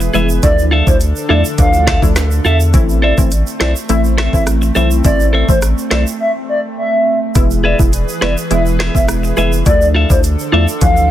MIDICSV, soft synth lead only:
0, 0, Header, 1, 2, 480
1, 0, Start_track
1, 0, Key_signature, 0, "minor"
1, 0, Tempo, 576923
1, 359, Time_signature, 4, 2, 24, 8
1, 9243, End_track
2, 0, Start_track
2, 0, Title_t, "Soft synth lead"
2, 0, Program_c, 0, 80
2, 357, Note_on_c, 0, 74, 110
2, 538, Note_off_c, 0, 74, 0
2, 725, Note_on_c, 0, 72, 77
2, 810, Note_off_c, 0, 72, 0
2, 1077, Note_on_c, 0, 74, 84
2, 1173, Note_off_c, 0, 74, 0
2, 1320, Note_on_c, 0, 77, 102
2, 1664, Note_off_c, 0, 77, 0
2, 2039, Note_on_c, 0, 76, 83
2, 2134, Note_off_c, 0, 76, 0
2, 2518, Note_on_c, 0, 74, 87
2, 2614, Note_off_c, 0, 74, 0
2, 2997, Note_on_c, 0, 74, 87
2, 3093, Note_off_c, 0, 74, 0
2, 3240, Note_on_c, 0, 76, 81
2, 3335, Note_off_c, 0, 76, 0
2, 3606, Note_on_c, 0, 76, 79
2, 3690, Note_off_c, 0, 76, 0
2, 4198, Note_on_c, 0, 74, 108
2, 4378, Note_off_c, 0, 74, 0
2, 4566, Note_on_c, 0, 72, 75
2, 4651, Note_off_c, 0, 72, 0
2, 4920, Note_on_c, 0, 74, 83
2, 5015, Note_off_c, 0, 74, 0
2, 5158, Note_on_c, 0, 76, 89
2, 5254, Note_off_c, 0, 76, 0
2, 5400, Note_on_c, 0, 74, 84
2, 5495, Note_off_c, 0, 74, 0
2, 5638, Note_on_c, 0, 76, 93
2, 5983, Note_off_c, 0, 76, 0
2, 6361, Note_on_c, 0, 74, 80
2, 6455, Note_off_c, 0, 74, 0
2, 6842, Note_on_c, 0, 74, 84
2, 6936, Note_off_c, 0, 74, 0
2, 7082, Note_on_c, 0, 76, 83
2, 7176, Note_off_c, 0, 76, 0
2, 7447, Note_on_c, 0, 76, 75
2, 7531, Note_off_c, 0, 76, 0
2, 8038, Note_on_c, 0, 74, 109
2, 8218, Note_off_c, 0, 74, 0
2, 8406, Note_on_c, 0, 72, 77
2, 8491, Note_off_c, 0, 72, 0
2, 8759, Note_on_c, 0, 74, 88
2, 8854, Note_off_c, 0, 74, 0
2, 8998, Note_on_c, 0, 77, 109
2, 9243, Note_off_c, 0, 77, 0
2, 9243, End_track
0, 0, End_of_file